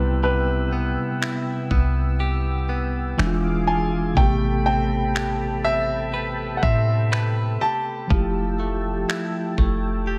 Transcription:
Already playing: 808-style bass C2, clean electric guitar C3 B3 G4, tine electric piano C3 G3 B3 E4, analog synth pad B3 G5 E6, grand piano B4
0.23 clean electric guitar C3, grand piano B4
0.73 clean electric guitar B3
1.22 clean electric guitar E4, finger snap
1.71 808-style bass C2, clean electric guitar B3, kick
2.20 clean electric guitar G4
2.69 clean electric guitar B3
3.17 808-style bass E1, tine electric piano E3 G#3 D4 E4, clean electric guitar E3, analog synth pad G#4 F5 D6, finger snap
3.27 tine electric piano F4
3.67 clean electric guitar F4, grand piano G#5
4.14 808-style bass A1, tine electric piano C3 A3, clean electric guitar A3, analog synth pad A4 G5 A5 B5, grand piano G5, kick
4.18 tine electric piano B3 G4
4.66 clean electric guitar C4, grand piano G5
5.15 clean electric guitar G4, finger snap
5.64 clean electric guitar C4, grand piano E5
6.14 clean electric guitar B4
6.57 grand piano F#5
6.63 808-style bass A2, clean electric guitar C4, grand piano E5, kick
7.12 clean electric guitar B4, finger snap
7.61 clean electric guitar G4, grand piano A5
8.07 808-style bass F1, tine electric piano F3 G#3, clean electric guitar F3, analog synth pad G4 G5 A5 E6, kick
8.12 tine electric piano E4 G4
8.16 tine electric piano A3
8.60 clean electric guitar A3
9.09 clean electric guitar E4, finger snap
9.58 808-style bass F1, clean electric guitar A3, kick
10.07 clean electric guitar G4

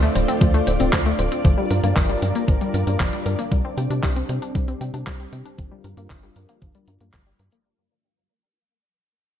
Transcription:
Already playing: string machine A3 D4 F4 C5 D5
0.03 synth arpeggio sound A3, closed hi-hat
0.15 analog synth bass D1, synth arpeggio sound C5, closed hi-hat
0.28 synth arpeggio sound C4, closed hi-hat
0.41 analog synth bass D2, synth arpeggio sound F3, kick, closed hi-hat
0.54 synth arpeggio sound A3, closed hi-hat
0.67 analog synth bass D1, synth arpeggio sound C5, closed hi-hat
0.80 analog synth bass D1, synth arpeggio sound C4, closed hi-hat
0.93 analog synth bass D2, synth arpeggio sound F3, kick, clap, closed hi-hat
1.06 synth arpeggio sound A3, closed hi-hat
1.19 analog synth bass D1, synth arpeggio sound C5, closed hi-hat
1.32 synth arpeggio sound C4, closed hi-hat
1.45 analog synth bass G1, synth arpeggio sound F3, string machine G3 A#4, kick, closed hi-hat
1.58 synth arpeggio sound G3
1.71 analog synth bass G2, synth arpeggio sound A#4, closed hi-hat
1.83 analog synth bass G2, synth arpeggio sound A#3, closed hi-hat
1.96 analog synth bass G1, synth arpeggio sound F3, kick, clap, closed hi-hat
2.09 synth arpeggio sound G3, closed hi-hat
2.22 analog synth bass G2, synth arpeggio sound A#4, closed hi-hat
2.35 synth arpeggio sound A#3, closed hi-hat
2.48 analog synth bass G1, synth arpeggio sound F3, kick, closed hi-hat
2.61 synth arpeggio sound G3, closed hi-hat
2.74 analog synth bass G2, synth arpeggio sound A#4, closed hi-hat
2.87 analog synth bass G2, synth arpeggio sound A#3, closed hi-hat
3.00 analog synth bass G1, synth arpeggio sound F3, kick, clap, closed hi-hat
3.13 synth arpeggio sound G3, closed hi-hat
3.26 analog synth bass G2, synth arpeggio sound A#4, closed hi-hat
3.39 synth arpeggio sound A#3, closed hi-hat
3.52 analog synth bass C2, synth arpeggio sound G3, string machine G3 C4 C5, kick, closed hi-hat
3.65 synth arpeggio sound C4
3.77 analog synth bass C3, synth arpeggio sound G5, closed hi-hat
3.90 analog synth bass C3, synth arpeggio sound D4, closed hi-hat
4.03 analog synth bass C2, synth arpeggio sound G3, kick, clap, closed hi-hat
4.16 synth arpeggio sound C4, closed hi-hat
4.29 analog synth bass C3, synth arpeggio sound G5, closed hi-hat
4.42 synth arpeggio sound D4, closed hi-hat
4.55 analog synth bass C2, synth arpeggio sound G3, kick, closed hi-hat
4.68 synth arpeggio sound C4, closed hi-hat
4.81 analog synth bass C3, synth arpeggio sound G5, closed hi-hat
4.94 analog synth bass C3, synth arpeggio sound D4, closed hi-hat
5.07 analog synth bass C2, synth arpeggio sound G3, kick, clap, closed hi-hat
5.20 synth arpeggio sound C4, closed hi-hat
5.33 analog synth bass C3, synth arpeggio sound G5, closed hi-hat
5.45 synth arpeggio sound D4, closed hi-hat
5.58 analog synth bass G1, synth arpeggio sound F3, string machine D4 F4 A#4, kick, closed hi-hat
5.71 synth arpeggio sound G3
5.84 analog synth bass G2, synth arpeggio sound A#4, closed hi-hat
5.97 analog synth bass G2, synth arpeggio sound A#3, closed hi-hat
6.10 analog synth bass G1, synth arpeggio sound F3, kick, clap, closed hi-hat
6.23 synth arpeggio sound G3, closed hi-hat
6.36 analog synth bass G2, synth arpeggio sound A#4, closed hi-hat
6.49 synth arpeggio sound A#3, closed hi-hat
6.62 analog synth bass G1, synth arpeggio sound F3, kick, closed hi-hat
6.75 synth arpeggio sound G3, closed hi-hat
6.88 analog synth bass G2, synth arpeggio sound A#4, closed hi-hat
7.01 analog synth bass G2, synth arpeggio sound A#3, closed hi-hat
7.13 analog synth bass G1, synth arpeggio sound F3, kick, clap, closed hi-hat
7.26 synth arpeggio sound G3, closed hi-hat
7.39 analog synth bass G2, synth arpeggio sound A#4, closed hi-hat
7.52 synth arpeggio sound A#3, closed hi-hat

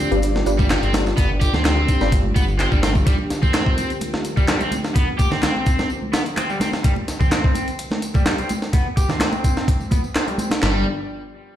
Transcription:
Already playing: overdriven electric guitar C4, analog synth pad D4 F4 G4 D5
0.00 closed hi-hat
0.11 detuned saw bass G1, synth stab D4 F4 G4 B4, closed hi-hat, tambourine
0.22 closed hi-hat, tambourine
0.35 snare, muted conga, high conga
0.46 detuned saw bass G1, synth stab D4 F4 G4 B4, closed hi-hat, tambourine
0.59 overdriven electric guitar G3, kick, tambourine, muted conga
0.70 overdriven electric guitar G3, snare, clap, closed hi-hat, tambourine
0.82 detuned saw bass G1, overdriven electric guitar C4, closed hi-hat, tambourine
0.93 snare, closed hi-hat, tambourine, muted conga, high conga
1.06 snare, tambourine
1.17 detuned saw bass G1, overdriven electric guitar B3, kick, closed hi-hat, tambourine, muted conga
1.41 overdriven electric guitar G4, kick, closed hi-hat, tambourine
1.53 detuned saw bass D2, overdriven electric guitar C4, snare, tambourine, muted conga, low conga
1.65 overdriven electric guitar C4, snare, clap, closed hi-hat, tambourine, high conga
1.77 muted conga
1.88 kick, closed hi-hat, tambourine
2.01 detuned saw bass G1, synth stab D4 F4 G4 B4, snare, tambourine
2.12 kick, closed hi-hat, tambourine, muted conga
2.24 high conga
2.36 detuned saw bass G1, overdriven electric guitar B3, kick, closed hi-hat, tambourine, muted conga
2.48 tambourine
2.59 overdriven electric guitar C4, snare, clap, closed hi-hat, tambourine
2.72 detuned saw bass G1, overdriven electric guitar G3, kick, tambourine, muted conga
2.83 overdriven electric guitar C4, snare, closed hi-hat, tambourine, high conga
2.95 kick, tambourine, muted conga
3.06 overdriven electric guitar G3, analog synth pad A#4, kick, closed hi-hat, tambourine
3.19 muted conga
3.30 snare, closed hi-hat, tambourine
3.42 overdriven electric guitar C4, kick, tambourine, muted conga, low conga
3.54 snare, clap, closed hi-hat, tambourine, high conga
3.66 kick
3.78 closed hi-hat, tambourine, muted conga
3.90 closed hi-hat, tambourine
4.01 closed hi-hat, tambourine, muted conga
4.14 snare, high conga
4.24 closed hi-hat, tambourine
4.37 overdriven electric guitar G3, kick, tambourine, muted conga
4.48 overdriven electric guitar G3, snare, clap, closed hi-hat, tambourine
4.60 overdriven electric guitar C4, closed hi-hat, tambourine, muted conga
4.71 closed hi-hat, tambourine, high conga
4.84 snare, tambourine
4.95 overdriven electric guitar B3, kick, closed hi-hat, tambourine, muted conga
5.19 overdriven electric guitar G4, kick, closed hi-hat, tambourine, muted conga
5.31 overdriven electric guitar C4, snare, tambourine, low conga
5.42 overdriven electric guitar C4, snare, clap, closed hi-hat, tambourine, high conga
5.56 muted conga
5.66 kick, closed hi-hat, tambourine
5.79 snare, tambourine, muted conga
5.90 tambourine
6.03 high conga
6.13 overdriven electric guitar B3, snare, closed hi-hat, tambourine, muted conga
6.26 closed hi-hat, tambourine
6.37 overdriven electric guitar C4, clap, closed hi-hat, tambourine, muted conga
6.50 overdriven electric guitar G3, tambourine
6.60 overdriven electric guitar C4, snare, closed hi-hat, tambourine, high conga
6.73 snare, tambourine, muted conga
6.84 overdriven electric guitar G3, kick, closed hi-hat, tambourine
6.96 muted conga
7.08 snare, closed hi-hat, tambourine
7.20 overdriven electric guitar C4, kick, tambourine, low conga
7.32 snare, clap, closed hi-hat, tambourine, muted conga, high conga
7.44 kick
7.55 closed hi-hat, tambourine, muted conga
7.68 closed hi-hat, tambourine
7.79 closed hi-hat, tambourine
7.91 snare, muted conga, high conga
8.02 closed hi-hat, tambourine
8.14 overdriven electric guitar G3, kick, tambourine, muted conga
8.26 overdriven electric guitar G3, snare, clap, closed hi-hat, tambourine
8.38 overdriven electric guitar C4, closed hi-hat, tambourine
8.49 closed hi-hat, tambourine, muted conga, high conga
8.62 snare, tambourine
8.73 overdriven electric guitar B3, kick, closed hi-hat, tambourine, muted conga
8.97 overdriven electric guitar G4, kick, closed hi-hat, tambourine
9.09 overdriven electric guitar C4, snare, tambourine, muted conga, low conga
9.19 overdriven electric guitar C4, snare, clap, closed hi-hat, tambourine, high conga
9.33 tambourine, muted conga
9.44 kick, closed hi-hat, tambourine
9.57 snare, tambourine
9.68 kick, closed hi-hat, tambourine, muted conga
9.80 tambourine, high conga
9.91 overdriven electric guitar B3, kick, closed hi-hat, tambourine, muted conga
10.04 tambourine
10.15 overdriven electric guitar C4, snare, clap, closed hi-hat, tambourine
10.28 overdriven electric guitar G3, closed hi-hat, tambourine, muted conga
10.38 overdriven electric guitar C4, closed hi-hat, tambourine, high conga
10.51 snare, closed hi-hat, muted conga
10.62 detuned saw bass G1, overdriven electric guitar G3, analog synth pad B3 D4 F4 G4 D5, snare, clap

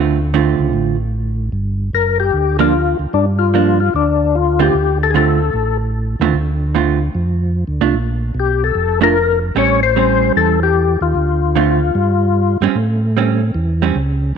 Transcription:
Already playing: tonewheel organ D2, hollow-body jazz guitar D3 A3 C4 F4
0.34 hollow-body jazz guitar D3 A3 C4 F4
0.59 tonewheel organ C#2
0.73 tonewheel organ A1
1.52 tonewheel organ G1
1.93 tonewheel organ F#1 A#4
2.20 tonewheel organ G4
2.33 tonewheel organ D2
2.59 hollow-body jazz guitar F3 A#3 D4, tonewheel organ F4
2.99 tonewheel organ D2
3.13 tonewheel organ G2 D4
3.39 tonewheel organ F4
3.54 hollow-body jazz guitar F3 A#3 D4
3.80 tonewheel organ F4
3.94 tonewheel organ D2 D4
4.35 tonewheel organ F4
4.59 hollow-body jazz guitar D3 A3 C4 F4, tonewheel organ G4
4.74 tonewheel organ D2
5.03 tonewheel organ A4
5.10 tonewheel organ G#4
5.14 hollow-body jazz guitar D3 A3 C4 F4, tonewheel organ A4
5.53 tonewheel organ A1
6.20 tonewheel organ D#2, hollow-body jazz guitar D3 A3 C4 F4
6.33 tonewheel organ D2
6.75 hollow-body jazz guitar D3 A3 C4 F4
7.15 tonewheel organ F2
7.67 tonewheel organ D2
7.81 tonewheel organ C2, hollow-body jazz guitar A3 D4 F4
7.94 tonewheel organ A#1
8.35 tonewheel organ B1
8.40 tonewheel organ G4
8.64 tonewheel organ A4
8.75 tonewheel organ F1
9.01 hollow-body jazz guitar A3 D4 F4, tonewheel organ A#4
9.55 tonewheel organ A1 C#5, hollow-body jazz guitar G3 C4 C#4
9.83 tonewheel organ C5
9.96 hollow-body jazz guitar G3 C4 C#4
10.36 tonewheel organ E2 A4
10.63 tonewheel organ G4
11.01 tonewheel organ D#2 F4
11.15 tonewheel organ D2
11.56 hollow-body jazz guitar D3 A3 C4 F4
11.95 tonewheel organ G2
12.61 tonewheel organ G2, hollow-body jazz guitar G3 C4 C#4
12.75 tonewheel organ A2
13.17 hollow-body jazz guitar G3 C4 C#4
13.55 tonewheel organ E2
13.82 hollow-body jazz guitar G3 C4 C#4
13.95 tonewheel organ C#2

